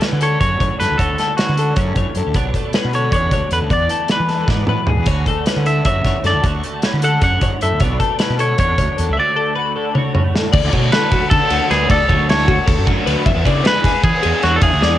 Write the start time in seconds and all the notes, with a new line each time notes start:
Already playing: D2 D3 A3 F#4
0.01 C#4 B4, snare, closed hi-hat
0.13 D3
0.20 D3 A4 C#5, closed hi-hat
0.40 F#2 F#4 C#5, kick, closed hi-hat
0.58 F#2 A2 C#5, kick, closed hi-hat
0.80 F#2 A4 B4, snare, closed hi-hat
0.91 D2
0.98 D2 F#4 A4 C#5, kick, closed hi-hat
1.18 A3 A4, snare, closed hi-hat
1.37 C#4 F#4 B4, snare, closed hi-hat
1.49 D3
1.56 D3 A4, closed hi-hat
1.76 F#2 C#4 C#5, kick, closed hi-hat
1.96 F#2 A2 C#5, kick, closed hi-hat
2.15 F#2 A4, closed hi-hat
2.26 D2
2.34 B1 B2 D4 C#5, kick, closed hi-hat
2.54 A3 A4, kick, closed hi-hat
2.73 C#4 B4, snare, closed hi-hat
2.85 B2
2.93 D3 A4 C#5, closed hi-hat
3.11 E2 D4 C#5, kick, closed hi-hat
3.31 D2 F#2 C#5, kick, closed hi-hat
3.51 E2 A4 B4, closed hi-hat
3.62 D2
3.70 E2 D4 D5, kick, closed hi-hat
3.89 A3 A4, closed hi-hat
4.08 B3 B4, snare, closed hi-hat
4.20 E3
4.28 E3 A4, snare, closed hi-hat
4.48 G#2 D4 B4, kick, snare
4.67 A2 B2 B4, mid tom
4.87 G#2 G#4, floor tom
4.97 E2
5.06 D2 F#4 C#5, kick, closed hi-hat, splash
5.26 A3 A4, kick, closed hi-hat
5.46 C#4 B4, snare, closed hi-hat
5.56 D3
5.66 D3 A4 E5, closed hi-hat
5.85 F#2 F#4 C#5 E5, kick, closed hi-hat
6.05 F#2 A2 C#5, kick, snare, closed hi-hat
6.24 F#2 A4 D5, snare, closed hi-hat
6.33 D2
6.44 D2 F#4 C#5, kick, closed hi-hat
6.64 A3 A4, closed hi-hat
6.82 C#4 B4, snare, closed hi-hat
6.93 D3
7.02 D3 A4 F#5, closed hi-hat
7.21 F#2 C#5 F#5, kick, closed hi-hat
7.41 F#2 G#2 C#5, kick, closed hi-hat
7.61 F#2 A2 A4 E5, closed hi-hat
7.72 D2
7.80 B1 B2 D4 C#5, kick, closed hi-hat
8.00 A3 A4, kick, closed hi-hat
8.19 C#4 B4, snare, closed hi-hat
8.30 B2
8.39 D3 A4 C#5, closed hi-hat
8.58 E2 D4 C#5, kick, closed hi-hat
8.78 D2 F#2 C#5, kick, closed hi-hat
8.97 E2 A4, closed hi-hat
9.09 C#2 E5
9.17 D2 D3 A3 F#4 C#5 D5
9.36 A3 A4
9.55 F#4 B4
9.76 D3 A4
9.95 F#4 C#5, high tom
10.15 A2 C#5, mid tom
10.34 A4, snare
10.53 D2 D5, kick, crash
10.64 D2
10.73 B2 F#3 A3 D4 F#4 C#5, kick, ride
10.92 F#3 A3 D4 F#4 A4 B4, snare, ride
11.11 F#4, kick, ride
11.30 D3 A4, kick, ride
11.50 D2 F#3 A3 D4 F#4, ride
11.70 D2 F#3 A3 D4 F#4 G#4 B4, snare, ride
11.90 D2 A4 D5, kick, ride
12.02 C#2
12.08 D2 F#3 A3 D4 F#4 C#5, kick, ride
12.29 F#3 A3 D4 F#4 A4 C#5, snare, ride
12.48 F#4, kick, ride
12.66 D2 A4, kick, ride
12.79 F#2
12.87 F#3 A3 D4 F#4, kick, ride
13.06 D2 F#3 A3 D4 F#4 B4, ride
13.26 E2 E5, kick, ride
13.36 E2
13.45 C#3 E3 B3 D4 G#4 D5, kick, ride
13.64 E3 B3 D4 G#4 B4, snare, ride
13.84 G#4, kick, snare, ride
14.04 E3 G#4 B4, kick, ride
14.23 E2 E3 B3 D4 G#4, ride
14.43 E2 E3 B3 D4 F#4 G#4 C#5, snare, ride
14.56 A4
14.61 E2 G#4 E5, kick, ride
14.73 D2
14.81 E2 E3 B3 D4 G#4 D5, snare